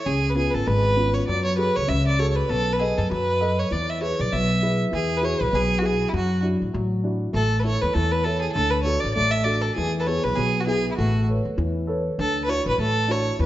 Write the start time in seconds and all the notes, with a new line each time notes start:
0.05 C#2 C#3 G#4
0.30 B4
0.35 B3 C#4 F4 G#4
0.50 G#1 A4 B4
0.67 G#1 G#3 B4
0.97 B3 C#4 F4
1.14 C#5
1.27 F#2 F#3 D5
1.45 C#5
1.57 F#4 G#4 A4 B4
1.76 C#2 C#5
1.87 C#2 C#3 E5
2.07 D5
2.18 F#4 G#4 A4 C#5
2.31 C#5
2.36 B4
2.49 B1 B3 A4
2.73 B4
2.79 G#4 A4 B4 D#5
2.98 F#2 A4
3.10 F#2 F#3 B4
3.40 A4 B4 D#5
3.59 C#5
3.71 E2 E3 D5
3.90 E5
4.00 E4 G#4 B4 C#5
4.19 B1 D5
4.32 B1 B2 E5
4.62 E4 G#4 B4
4.91 E2 E3 G#4
5.18 E4 F#4 B4
5.22 G#4 C#5
5.41 B1 B4
5.52 B1 B2 G#4
5.78 E4 F#4 G#4
5.86 G#4
6.09 F#3 E4
6.14 F#2 F#4
6.42 D4 E4 F#4
6.62 A1
6.73 A1 F#3
7.04 D4 E4 F#4
7.33 A1 A3 A4
7.59 B4
7.64 E4 A4 C#5
7.82 E2 B4
7.94 E2 E3 A4
8.11 B4
8.24 E4 A4 C#5
8.41 G#4
8.52 D2 D3 A4
8.70 B4
8.83 D4 F#4 A4 C#5
9.00 D5
9.04 A1
9.13 A3 D5
9.17 A1
9.31 E5
9.44 D4 F#4 A4 D5
9.62 A4
9.75 E2 E3 G#4
10.00 A4 B4
10.06 B3 E4 G#4 C#5
10.24 B1 B4
10.36 B1 B2 G#4
10.60 F#4
10.66 B3 E4 G#4
10.91 E4
10.97 A1 A3 F#4
11.28 A4 B4 C#5
11.45 E2
11.58 E2 E3
11.87 A4 B4 C#5
12.18 D2 D3 A4
12.44 D4 B4
12.48 E4 F#4 C#5
12.66 A1 B4
12.78 A1 A3 A4
13.08 D4 E4 F#4 C#5
13.39 E2 E3 B4